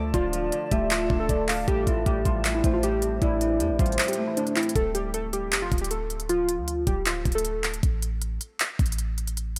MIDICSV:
0, 0, Header, 1, 7, 480
1, 0, Start_track
1, 0, Key_signature, -1, "minor"
1, 0, Tempo, 384615
1, 175, Time_signature, 4, 2, 24, 8
1, 11972, End_track
2, 0, Start_track
2, 0, Title_t, "Soft synth lead"
2, 0, Program_c, 0, 80
2, 174, Note_on_c, 0, 74, 107
2, 851, Note_off_c, 0, 74, 0
2, 894, Note_on_c, 0, 76, 76
2, 1571, Note_off_c, 0, 76, 0
2, 1615, Note_on_c, 0, 74, 84
2, 1842, Note_off_c, 0, 74, 0
2, 1855, Note_on_c, 0, 77, 96
2, 2082, Note_off_c, 0, 77, 0
2, 2095, Note_on_c, 0, 69, 92
2, 2546, Note_off_c, 0, 69, 0
2, 3293, Note_on_c, 0, 72, 85
2, 3521, Note_off_c, 0, 72, 0
2, 4019, Note_on_c, 0, 74, 110
2, 4694, Note_off_c, 0, 74, 0
2, 4736, Note_on_c, 0, 72, 94
2, 5885, Note_off_c, 0, 72, 0
2, 11972, End_track
3, 0, Start_track
3, 0, Title_t, "Ambient pad"
3, 0, Program_c, 1, 92
3, 0, Note_on_c, 1, 65, 92
3, 0, Note_on_c, 1, 74, 84
3, 0, Note_on_c, 1, 81, 101
3, 2056, Note_off_c, 1, 65, 0
3, 2056, Note_off_c, 1, 74, 0
3, 2095, Note_on_c, 1, 67, 89
3, 2096, Note_on_c, 1, 72, 82
3, 5885, Note_off_c, 1, 81, 0
3, 5896, Note_off_c, 1, 67, 0
3, 5896, Note_off_c, 1, 72, 0
3, 11972, End_track
4, 0, Start_track
4, 0, Title_t, "Synth keys"
4, 0, Program_c, 2, 88
4, 0, Note_on_c, 2, 69, 86
4, 144, Note_off_c, 2, 69, 0
4, 173, Note_on_c, 2, 65, 111
4, 850, Note_off_c, 2, 65, 0
4, 894, Note_on_c, 2, 67, 85
4, 1086, Note_off_c, 2, 67, 0
4, 1134, Note_on_c, 2, 65, 74
4, 1473, Note_off_c, 2, 65, 0
4, 1494, Note_on_c, 2, 69, 75
4, 2058, Note_off_c, 2, 69, 0
4, 2096, Note_on_c, 2, 67, 118
4, 2287, Note_off_c, 2, 67, 0
4, 2333, Note_on_c, 2, 65, 77
4, 2525, Note_off_c, 2, 65, 0
4, 2575, Note_on_c, 2, 67, 89
4, 2766, Note_off_c, 2, 67, 0
4, 2814, Note_on_c, 2, 65, 84
4, 3152, Note_off_c, 2, 65, 0
4, 3176, Note_on_c, 2, 64, 80
4, 3367, Note_off_c, 2, 64, 0
4, 3413, Note_on_c, 2, 65, 86
4, 3510, Note_off_c, 2, 65, 0
4, 3537, Note_on_c, 2, 67, 88
4, 3987, Note_off_c, 2, 67, 0
4, 4015, Note_on_c, 2, 64, 105
4, 4691, Note_off_c, 2, 64, 0
4, 4736, Note_on_c, 2, 65, 84
4, 5073, Note_off_c, 2, 65, 0
4, 5093, Note_on_c, 2, 67, 75
4, 5285, Note_off_c, 2, 67, 0
4, 5335, Note_on_c, 2, 64, 74
4, 5431, Note_off_c, 2, 64, 0
4, 5454, Note_on_c, 2, 62, 75
4, 5646, Note_off_c, 2, 62, 0
4, 5693, Note_on_c, 2, 64, 75
4, 5885, Note_off_c, 2, 64, 0
4, 5934, Note_on_c, 2, 69, 98
4, 6126, Note_off_c, 2, 69, 0
4, 6173, Note_on_c, 2, 67, 88
4, 6365, Note_off_c, 2, 67, 0
4, 6416, Note_on_c, 2, 69, 88
4, 6607, Note_off_c, 2, 69, 0
4, 6653, Note_on_c, 2, 67, 84
4, 6992, Note_off_c, 2, 67, 0
4, 7014, Note_on_c, 2, 65, 92
4, 7206, Note_off_c, 2, 65, 0
4, 7255, Note_on_c, 2, 67, 70
4, 7350, Note_off_c, 2, 67, 0
4, 7373, Note_on_c, 2, 69, 79
4, 7825, Note_off_c, 2, 69, 0
4, 7854, Note_on_c, 2, 65, 105
4, 8531, Note_off_c, 2, 65, 0
4, 8573, Note_on_c, 2, 67, 85
4, 8765, Note_off_c, 2, 67, 0
4, 8813, Note_on_c, 2, 65, 73
4, 9152, Note_off_c, 2, 65, 0
4, 9174, Note_on_c, 2, 69, 75
4, 9738, Note_off_c, 2, 69, 0
4, 11972, End_track
5, 0, Start_track
5, 0, Title_t, "Harp"
5, 0, Program_c, 3, 46
5, 0, Note_on_c, 3, 50, 80
5, 0, Note_on_c, 3, 57, 87
5, 0, Note_on_c, 3, 62, 91
5, 0, Note_on_c, 3, 74, 90
5, 157, Note_off_c, 3, 50, 0
5, 172, Note_on_c, 3, 50, 99
5, 415, Note_on_c, 3, 53, 84
5, 637, Note_off_c, 3, 50, 0
5, 652, Note_on_c, 3, 50, 89
5, 717, Note_off_c, 3, 53, 0
5, 886, Note_off_c, 3, 57, 0
5, 891, Note_on_c, 3, 57, 91
5, 1119, Note_off_c, 3, 50, 0
5, 1134, Note_on_c, 3, 50, 92
5, 1371, Note_off_c, 3, 62, 0
5, 1376, Note_on_c, 3, 62, 84
5, 1596, Note_off_c, 3, 50, 0
5, 1611, Note_on_c, 3, 50, 81
5, 1848, Note_off_c, 3, 74, 0
5, 1853, Note_on_c, 3, 74, 83
5, 2092, Note_on_c, 3, 45, 95
5, 2157, Note_off_c, 3, 50, 0
5, 2336, Note_on_c, 3, 52, 86
5, 2559, Note_off_c, 3, 45, 0
5, 2574, Note_on_c, 3, 45, 88
5, 2814, Note_on_c, 3, 55, 88
5, 3039, Note_off_c, 3, 45, 0
5, 3053, Note_on_c, 3, 45, 88
5, 3289, Note_off_c, 3, 57, 0
5, 3294, Note_on_c, 3, 57, 85
5, 3518, Note_off_c, 3, 45, 0
5, 3533, Note_on_c, 3, 45, 81
5, 3774, Note_on_c, 3, 60, 83
5, 3999, Note_off_c, 3, 45, 0
5, 4014, Note_on_c, 3, 45, 100
5, 4157, Note_off_c, 3, 74, 0
5, 4238, Note_off_c, 3, 52, 0
5, 4253, Note_on_c, 3, 52, 80
5, 4479, Note_off_c, 3, 45, 0
5, 4494, Note_on_c, 3, 45, 89
5, 4722, Note_off_c, 3, 55, 0
5, 4737, Note_on_c, 3, 55, 92
5, 4869, Note_off_c, 3, 62, 0
5, 4959, Note_off_c, 3, 45, 0
5, 4974, Note_on_c, 3, 45, 86
5, 5208, Note_off_c, 3, 57, 0
5, 5213, Note_on_c, 3, 57, 85
5, 5442, Note_off_c, 3, 45, 0
5, 5457, Note_on_c, 3, 45, 85
5, 5690, Note_off_c, 3, 60, 0
5, 5695, Note_on_c, 3, 60, 91
5, 5997, Note_off_c, 3, 45, 0
5, 5997, Note_off_c, 3, 52, 0
5, 5997, Note_off_c, 3, 55, 0
5, 9367, Note_off_c, 3, 57, 0
5, 9439, Note_off_c, 3, 60, 0
5, 11972, End_track
6, 0, Start_track
6, 0, Title_t, "808-style bass"
6, 0, Program_c, 4, 38
6, 0, Note_on_c, 4, 38, 98
6, 161, Note_off_c, 4, 38, 0
6, 173, Note_on_c, 4, 26, 115
6, 634, Note_off_c, 4, 26, 0
6, 893, Note_on_c, 4, 26, 109
6, 1354, Note_off_c, 4, 26, 0
6, 1373, Note_on_c, 4, 26, 105
6, 1604, Note_off_c, 4, 26, 0
6, 1613, Note_on_c, 4, 26, 104
6, 2074, Note_off_c, 4, 26, 0
6, 2094, Note_on_c, 4, 33, 116
6, 2324, Note_off_c, 4, 33, 0
6, 2333, Note_on_c, 4, 33, 103
6, 2564, Note_off_c, 4, 33, 0
6, 2574, Note_on_c, 4, 33, 111
6, 2805, Note_off_c, 4, 33, 0
6, 2814, Note_on_c, 4, 33, 109
6, 3275, Note_off_c, 4, 33, 0
6, 3294, Note_on_c, 4, 33, 105
6, 3985, Note_off_c, 4, 33, 0
6, 4015, Note_on_c, 4, 33, 105
6, 4495, Note_on_c, 4, 40, 107
6, 4514, Note_off_c, 4, 33, 0
6, 4615, Note_on_c, 4, 33, 103
6, 4634, Note_off_c, 4, 40, 0
6, 4729, Note_off_c, 4, 33, 0
6, 4734, Note_on_c, 4, 33, 105
6, 4964, Note_off_c, 4, 33, 0
6, 5934, Note_on_c, 4, 26, 103
6, 6894, Note_on_c, 4, 28, 98
6, 6913, Note_off_c, 4, 26, 0
6, 7122, Note_off_c, 4, 28, 0
6, 7134, Note_on_c, 4, 26, 110
6, 8215, Note_on_c, 4, 38, 103
6, 8233, Note_off_c, 4, 26, 0
6, 8556, Note_off_c, 4, 38, 0
6, 8573, Note_on_c, 4, 26, 105
6, 9034, Note_off_c, 4, 26, 0
6, 9054, Note_on_c, 4, 26, 106
6, 9745, Note_off_c, 4, 26, 0
6, 9774, Note_on_c, 4, 33, 114
6, 10465, Note_off_c, 4, 33, 0
6, 10974, Note_on_c, 4, 33, 109
6, 11972, Note_off_c, 4, 33, 0
6, 11972, End_track
7, 0, Start_track
7, 0, Title_t, "Drums"
7, 173, Note_on_c, 9, 36, 121
7, 174, Note_on_c, 9, 42, 75
7, 298, Note_off_c, 9, 36, 0
7, 299, Note_off_c, 9, 42, 0
7, 414, Note_on_c, 9, 42, 87
7, 539, Note_off_c, 9, 42, 0
7, 653, Note_on_c, 9, 42, 89
7, 778, Note_off_c, 9, 42, 0
7, 892, Note_on_c, 9, 42, 64
7, 893, Note_on_c, 9, 36, 103
7, 1017, Note_off_c, 9, 36, 0
7, 1017, Note_off_c, 9, 42, 0
7, 1133, Note_on_c, 9, 39, 114
7, 1134, Note_on_c, 9, 42, 74
7, 1258, Note_off_c, 9, 39, 0
7, 1259, Note_off_c, 9, 42, 0
7, 1373, Note_on_c, 9, 36, 94
7, 1498, Note_off_c, 9, 36, 0
7, 1613, Note_on_c, 9, 36, 87
7, 1613, Note_on_c, 9, 42, 77
7, 1738, Note_off_c, 9, 36, 0
7, 1738, Note_off_c, 9, 42, 0
7, 1849, Note_on_c, 9, 46, 49
7, 1853, Note_on_c, 9, 39, 93
7, 1974, Note_off_c, 9, 46, 0
7, 1978, Note_off_c, 9, 39, 0
7, 2094, Note_on_c, 9, 36, 127
7, 2095, Note_on_c, 9, 42, 78
7, 2219, Note_off_c, 9, 36, 0
7, 2219, Note_off_c, 9, 42, 0
7, 2333, Note_on_c, 9, 36, 85
7, 2335, Note_on_c, 9, 42, 87
7, 2458, Note_off_c, 9, 36, 0
7, 2460, Note_off_c, 9, 42, 0
7, 2574, Note_on_c, 9, 36, 94
7, 2574, Note_on_c, 9, 42, 85
7, 2699, Note_off_c, 9, 36, 0
7, 2699, Note_off_c, 9, 42, 0
7, 2813, Note_on_c, 9, 42, 65
7, 2814, Note_on_c, 9, 36, 100
7, 2938, Note_off_c, 9, 36, 0
7, 2938, Note_off_c, 9, 42, 0
7, 3054, Note_on_c, 9, 39, 115
7, 3055, Note_on_c, 9, 42, 75
7, 3179, Note_off_c, 9, 39, 0
7, 3180, Note_off_c, 9, 42, 0
7, 3294, Note_on_c, 9, 36, 95
7, 3296, Note_on_c, 9, 42, 82
7, 3419, Note_off_c, 9, 36, 0
7, 3421, Note_off_c, 9, 42, 0
7, 3534, Note_on_c, 9, 42, 77
7, 3659, Note_off_c, 9, 42, 0
7, 3770, Note_on_c, 9, 42, 72
7, 3895, Note_off_c, 9, 42, 0
7, 4015, Note_on_c, 9, 36, 126
7, 4016, Note_on_c, 9, 42, 75
7, 4140, Note_off_c, 9, 36, 0
7, 4140, Note_off_c, 9, 42, 0
7, 4256, Note_on_c, 9, 42, 86
7, 4381, Note_off_c, 9, 42, 0
7, 4495, Note_on_c, 9, 42, 86
7, 4619, Note_off_c, 9, 42, 0
7, 4734, Note_on_c, 9, 36, 100
7, 4735, Note_on_c, 9, 42, 57
7, 4815, Note_off_c, 9, 42, 0
7, 4815, Note_on_c, 9, 42, 55
7, 4859, Note_off_c, 9, 36, 0
7, 4895, Note_off_c, 9, 42, 0
7, 4895, Note_on_c, 9, 42, 57
7, 4975, Note_off_c, 9, 42, 0
7, 4975, Note_on_c, 9, 39, 122
7, 4975, Note_on_c, 9, 42, 46
7, 5035, Note_off_c, 9, 42, 0
7, 5035, Note_on_c, 9, 42, 54
7, 5095, Note_off_c, 9, 42, 0
7, 5095, Note_on_c, 9, 42, 64
7, 5100, Note_off_c, 9, 39, 0
7, 5154, Note_off_c, 9, 42, 0
7, 5154, Note_on_c, 9, 42, 73
7, 5279, Note_off_c, 9, 42, 0
7, 5455, Note_on_c, 9, 42, 77
7, 5575, Note_off_c, 9, 42, 0
7, 5575, Note_on_c, 9, 42, 45
7, 5694, Note_on_c, 9, 39, 92
7, 5695, Note_off_c, 9, 42, 0
7, 5695, Note_on_c, 9, 42, 41
7, 5775, Note_off_c, 9, 42, 0
7, 5775, Note_on_c, 9, 42, 53
7, 5819, Note_off_c, 9, 39, 0
7, 5855, Note_off_c, 9, 42, 0
7, 5855, Note_on_c, 9, 42, 71
7, 5935, Note_on_c, 9, 36, 123
7, 5936, Note_off_c, 9, 42, 0
7, 5936, Note_on_c, 9, 42, 73
7, 6060, Note_off_c, 9, 36, 0
7, 6060, Note_off_c, 9, 42, 0
7, 6175, Note_on_c, 9, 42, 89
7, 6300, Note_off_c, 9, 42, 0
7, 6414, Note_on_c, 9, 42, 86
7, 6539, Note_off_c, 9, 42, 0
7, 6653, Note_on_c, 9, 42, 68
7, 6778, Note_off_c, 9, 42, 0
7, 6894, Note_on_c, 9, 39, 115
7, 6895, Note_on_c, 9, 42, 76
7, 7019, Note_off_c, 9, 39, 0
7, 7020, Note_off_c, 9, 42, 0
7, 7134, Note_on_c, 9, 36, 88
7, 7134, Note_on_c, 9, 42, 50
7, 7214, Note_off_c, 9, 42, 0
7, 7214, Note_on_c, 9, 42, 65
7, 7259, Note_off_c, 9, 36, 0
7, 7294, Note_off_c, 9, 42, 0
7, 7294, Note_on_c, 9, 42, 83
7, 7373, Note_off_c, 9, 42, 0
7, 7373, Note_on_c, 9, 42, 82
7, 7497, Note_off_c, 9, 42, 0
7, 7614, Note_on_c, 9, 42, 54
7, 7734, Note_off_c, 9, 42, 0
7, 7734, Note_on_c, 9, 42, 55
7, 7855, Note_off_c, 9, 42, 0
7, 7855, Note_on_c, 9, 42, 72
7, 7979, Note_off_c, 9, 42, 0
7, 8095, Note_on_c, 9, 42, 93
7, 8220, Note_off_c, 9, 42, 0
7, 8334, Note_on_c, 9, 42, 86
7, 8458, Note_off_c, 9, 42, 0
7, 8573, Note_on_c, 9, 36, 95
7, 8573, Note_on_c, 9, 42, 68
7, 8697, Note_off_c, 9, 42, 0
7, 8698, Note_off_c, 9, 36, 0
7, 8813, Note_on_c, 9, 39, 111
7, 8815, Note_on_c, 9, 42, 77
7, 8938, Note_off_c, 9, 39, 0
7, 8939, Note_off_c, 9, 42, 0
7, 9054, Note_on_c, 9, 36, 91
7, 9054, Note_on_c, 9, 42, 50
7, 9134, Note_off_c, 9, 42, 0
7, 9134, Note_on_c, 9, 42, 67
7, 9179, Note_off_c, 9, 36, 0
7, 9214, Note_off_c, 9, 42, 0
7, 9214, Note_on_c, 9, 42, 82
7, 9293, Note_off_c, 9, 42, 0
7, 9293, Note_on_c, 9, 42, 77
7, 9418, Note_off_c, 9, 42, 0
7, 9533, Note_on_c, 9, 39, 92
7, 9534, Note_on_c, 9, 42, 54
7, 9654, Note_off_c, 9, 42, 0
7, 9654, Note_on_c, 9, 42, 53
7, 9658, Note_off_c, 9, 39, 0
7, 9774, Note_off_c, 9, 42, 0
7, 9774, Note_on_c, 9, 36, 121
7, 9774, Note_on_c, 9, 42, 75
7, 9899, Note_off_c, 9, 36, 0
7, 9899, Note_off_c, 9, 42, 0
7, 10014, Note_on_c, 9, 42, 91
7, 10139, Note_off_c, 9, 42, 0
7, 10253, Note_on_c, 9, 42, 86
7, 10378, Note_off_c, 9, 42, 0
7, 10493, Note_on_c, 9, 42, 69
7, 10618, Note_off_c, 9, 42, 0
7, 10734, Note_on_c, 9, 39, 115
7, 10735, Note_on_c, 9, 42, 75
7, 10859, Note_off_c, 9, 39, 0
7, 10860, Note_off_c, 9, 42, 0
7, 10974, Note_on_c, 9, 36, 91
7, 10974, Note_on_c, 9, 42, 50
7, 11054, Note_off_c, 9, 42, 0
7, 11054, Note_on_c, 9, 42, 66
7, 11099, Note_off_c, 9, 36, 0
7, 11134, Note_off_c, 9, 42, 0
7, 11134, Note_on_c, 9, 42, 82
7, 11213, Note_off_c, 9, 42, 0
7, 11213, Note_on_c, 9, 42, 80
7, 11338, Note_off_c, 9, 42, 0
7, 11454, Note_on_c, 9, 42, 56
7, 11575, Note_off_c, 9, 42, 0
7, 11575, Note_on_c, 9, 42, 56
7, 11695, Note_off_c, 9, 42, 0
7, 11695, Note_on_c, 9, 42, 75
7, 11820, Note_off_c, 9, 42, 0
7, 11972, End_track
0, 0, End_of_file